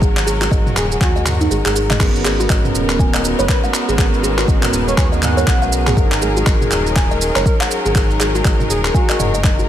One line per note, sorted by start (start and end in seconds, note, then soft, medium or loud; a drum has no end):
0.00 0.48 G#1 medium
0.00 1.96 F#3 medium
0.00 1.96 C#4 medium
0.00 1.98 F#4 medium
0.00 0.16 G#4 medium
0.00 1.96 A#4 medium
0.00 kick loud
0.00 shaker medium
0.17 clap medium
0.17 shaker soft
0.27 0.40 G#4 loud
0.27 shaker medium
0.41 0.50 F#4 loud
0.41 clap medium
0.41 shaker soft
0.51 0.72 G#1 medium
0.51 0.65 D#5 medium
0.51 kick loud
0.51 shaker medium
0.66 mid tom medium
0.66 shaker soft
0.76 0.97 D#1 loud
0.76 0.86 G#4 medium
0.76 clap medium
0.76 shaker medium
0.91 0.97 G#4 medium
0.91 shaker soft
1.01 1.47 D#2 medium
1.01 1.41 F#4 loud
1.01 1.15 G#5 medium
1.01 kick loud
1.01 clap medium
1.01 shaker soft
1.16 1.21 D#5 medium
1.16 shaker soft
1.26 clap medium
1.26 mid tom medium
1.26 shaker medium
1.41 1.46 D#4 medium
1.41 shaker soft
1.51 1.62 G#1 medium
1.51 1.64 G#4 medium
1.51 shaker soft
1.65 1.97 G#1 medium
1.65 1.75 G#4 medium
1.65 clap medium
1.65 shaker soft
1.76 1.83 G#4 medium
1.76 shaker medium
1.90 2.00 D#5 medium
1.90 clap medium
1.90 mid tom loud
1.90 shaker soft
2.00 2.46 G#1 loud
2.00 5.93 G#3 medium
2.00 5.93 B3 medium
2.00 3.22 B3 loud
2.00 3.22 C#4 medium
2.00 5.93 D#4 medium
2.00 3.22 F#4 medium
2.00 2.14 G#4 medium
2.00 3.96 A#4 medium
2.00 3.22 A#4 loud
2.00 kick loud
2.00 clap loud
2.00 crash loud
2.00 shaker medium
2.16 shaker soft
2.25 2.38 G#4 loud
2.25 clap medium
2.25 shaker medium
2.40 2.49 F#4 loud
2.40 shaker soft
2.50 2.70 G#1 medium
2.50 2.63 D#5 medium
2.50 kick loud
2.50 clap loud
2.50 shaker medium
2.65 mid tom medium
2.65 shaker soft
2.75 3.34 D#1 loud
2.75 shaker loud
2.89 clap medium
2.89 shaker soft
2.99 3.13 G#5 medium
2.99 kick loud
2.99 shaker medium
3.14 3.20 D#5 medium
3.14 clap loud
3.14 shaker soft
3.24 3.96 B3 medium
3.24 3.96 C#4 medium
3.24 3.96 F#4 medium
3.24 3.96 A#4 medium
3.24 shaker medium
3.39 3.47 F#1 loud
3.39 3.45 B4 loud
3.39 3.48 C#5 loud
3.39 shaker soft
3.49 3.58 B4 medium
3.49 kick loud
3.49 clap loud
3.49 shaker medium
3.64 3.73 F#5 loud
3.64 shaker soft
3.74 clap medium
3.74 shaker medium
3.88 4.45 G#1 medium
3.88 3.98 G#4 medium
3.88 shaker soft
3.98 5.20 B3 loud
3.98 5.20 C#4 medium
3.98 5.20 F#4 medium
3.98 9.69 G#4 medium
3.98 4.13 G#4 medium
3.98 5.20 A#4 loud
3.98 kick loud
3.98 clap loud
3.98 shaker medium
4.14 shaker soft
4.23 4.37 G#4 loud
4.23 shaker medium
4.38 4.47 F#4 loud
4.38 clap medium
4.38 shaker soft
4.48 4.69 G#1 medium
4.48 4.61 D#5 medium
4.48 kick loud
4.48 shaker medium
4.63 clap loud
4.63 mid tom medium
4.63 shaker soft
4.73 4.94 D#1 loud
4.73 shaker medium
4.87 4.94 C#5 medium
4.87 shaker soft
4.97 5.44 D#2 medium
4.97 5.07 C#5 medium
4.97 5.12 G#5 medium
4.97 kick loud
4.97 clap loud
4.97 shaker medium
5.12 5.18 D#5 medium
5.12 shaker soft
5.22 5.95 B3 medium
5.22 5.95 C#4 medium
5.22 5.95 F#4 medium
5.22 5.95 A#4 medium
5.22 5.72 F#5 medium
5.22 clap medium
5.22 mid tom loud
5.22 shaker loud
5.37 5.46 C#5 loud
5.37 shaker soft
5.47 5.94 B1 loud
5.47 kick loud
5.47 clap loud
5.47 shaker medium
5.62 5.71 F#5 loud
5.62 shaker soft
5.73 shaker loud
5.87 5.96 G#4 medium
5.87 clap medium
5.87 mid tom medium
5.87 shaker soft
5.97 6.43 G#1 loud
5.97 9.69 F#3 medium
5.97 9.69 C#4 medium
5.97 7.19 D#4 medium
5.97 6.11 G#4 medium
5.97 7.19 G#4 medium
5.97 9.69 A#4 medium
5.97 7.19 A#4 loud
5.97 kick loud
5.97 shaker medium
6.12 clap medium
6.12 shaker soft
6.22 6.35 G#4 loud
6.22 shaker loud
6.37 6.46 F#4 loud
6.37 shaker soft
6.46 6.67 G#1 medium
6.46 6.60 D#5 medium
6.46 kick loud
6.46 clap loud
6.46 shaker medium
6.61 mid tom medium
6.61 shaker soft
6.71 7.31 D#1 loud
6.71 clap medium
6.71 shaker medium
6.87 shaker soft
6.96 7.10 G#5 medium
6.96 kick loud
6.96 clap loud
6.96 shaker medium
7.11 7.16 D#5 medium
7.11 shaker soft
7.21 7.93 D#4 medium
7.21 7.93 G#4 medium
7.21 7.93 A#4 medium
7.21 shaker loud
7.36 7.44 F#1 loud
7.36 7.42 A#4 medium
7.36 7.45 C#5 loud
7.36 clap medium
7.36 shaker soft
7.46 7.55 A#4 medium
7.46 kick loud
7.46 shaker medium
7.60 7.70 F#5 loud
7.60 clap loud
7.60 shaker soft
7.71 shaker loud
7.85 8.42 G#1 medium
7.85 7.94 G#4 medium
7.85 shaker soft
7.95 9.17 D#4 loud
7.95 9.17 G#4 medium
7.95 9.17 A#4 loud
7.95 kick loud
7.95 clap loud
7.95 shaker medium
8.11 shaker soft
8.20 8.33 G#4 loud
8.20 clap medium
8.20 shaker medium
8.35 8.44 F#4 loud
8.35 shaker soft
8.45 8.66 G#1 medium
8.45 8.58 D#5 medium
8.45 kick loud
8.45 clap medium
8.45 shaker medium
8.60 mid tom medium
8.60 shaker soft
8.69 8.90 D#1 loud
8.69 8.79 G#4 medium
8.69 shaker loud
8.84 8.91 G#4 medium
8.84 clap medium
8.84 shaker soft
8.94 9.34 F#4 medium
8.94 9.09 G#5 medium
8.94 kick loud
8.94 shaker medium
9.09 9.15 D#5 medium
9.09 clap medium
9.09 shaker soft
9.19 9.66 F#1 medium
9.19 9.69 D#4 medium
9.19 9.69 G#4 medium
9.19 9.69 A#4 medium
9.19 9.33 D#5 medium
9.19 mid tom medium
9.19 shaker medium
9.34 9.43 D#5 medium
9.34 shaker soft
9.44 kick loud
9.44 clap medium
9.44 shaker medium
9.59 9.68 F#4 medium
9.59 shaker soft